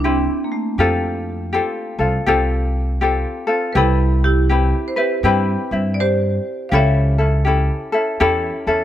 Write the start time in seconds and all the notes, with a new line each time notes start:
Already playing: C2
0.00 D4 G4
0.04 C4 E4
0.44 A#3
0.52 A3
0.78 F2 C4 F4 G4 A4
1.53 C4 F4 G4 A4
1.99 C2 C4 F4 A4
2.26 C2 C4 F4 G4 A4
3.01 C4 F4 G4 A4
3.47 C4 F4 A4
3.73 C2 C4 E4 G4 B4
3.77 E4 A4
4.24 E4 G4
4.49 C4 E4 G4 B4
4.88 C5
4.96 C4 E4 G4 B4
5.23 G2 C4 E4 G4 B4
5.71 G2 C4 E4
5.94 D5
6.00 G4 C5
6.69 C#2 C#4 E4 G4 F5
6.73 A4 C#5 E5
7.18 C#4 E4 A4
7.45 C#4 E4 G4 A4
7.92 C#4 E4 A4
8.20 E2 C#4 E4 G4 A4
8.67 E2 C#4 E4 A4